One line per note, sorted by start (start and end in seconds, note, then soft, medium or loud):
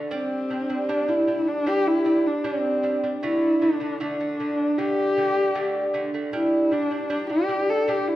0.11 0.42 G3 medium
0.11 0.90 C4 medium
0.11 0.42 D4 medium
0.50 0.65 G3 medium
0.50 0.66 D4 medium
0.70 0.85 G3 medium
0.70 0.85 D4 medium
0.89 1.04 G3 medium
0.89 1.10 D4 medium
0.89 1.04 D4 medium
1.08 1.23 G3 medium
1.08 1.24 D4 medium
1.08 1.49 E4 medium
1.27 1.58 G3 medium
1.27 1.59 D4 medium
1.48 1.69 D4 medium
1.66 1.97 G3 medium
1.66 1.97 D4 medium
1.66 1.89 G4 loud
1.87 2.28 E4 medium
2.05 2.36 G3 medium
2.05 2.36 D4 medium
2.26 2.47 D4 medium
2.44 2.75 G3 medium
2.44 3.03 C4 medium
2.44 2.75 D4 medium
2.83 2.99 G3 medium
2.83 2.99 D4 medium
3.03 3.18 G3 medium
3.03 3.18 D4 medium
3.23 3.53 D3 medium
3.23 3.54 A3 medium
3.23 3.64 E4 medium
3.61 3.77 D3 medium
3.61 3.77 A3 medium
3.61 4.00 D4 medium
3.80 3.96 D3 medium
3.80 3.96 A3 medium
4.00 4.15 D3 medium
4.00 4.16 A3 medium
4.00 4.79 D4 medium
4.20 4.35 D3 medium
4.20 4.35 A3 medium
4.40 4.70 D3 medium
4.40 4.70 A3 medium
4.78 5.09 D3 medium
4.78 5.09 A3 medium
4.78 5.94 G4 medium
5.17 5.48 D3 medium
5.17 5.48 A3 medium
5.55 5.86 D3 medium
5.55 5.86 A3 medium
5.94 6.09 D3 medium
5.94 6.10 A3 medium
6.14 6.29 D3 medium
6.14 6.29 A3 medium
6.33 6.64 G3 medium
6.33 6.64 D4 medium
6.33 6.73 E4 medium
6.71 6.87 G3 medium
6.71 7.11 D4 medium
6.71 6.87 D4 medium
6.91 7.07 G3 medium
6.91 7.07 D4 medium
7.10 7.26 G3 medium
7.10 7.26 D4 medium
7.10 7.30 D4 medium
7.29 7.45 G3 medium
7.29 7.46 D4 medium
7.29 7.71 G4 medium
7.48 7.80 G3 medium
7.48 7.80 D4 medium
7.69 7.90 A4 medium
7.88 8.16 G3 medium
7.88 8.16 D4 medium
7.88 8.10 G4 medium
8.08 8.16 E4 medium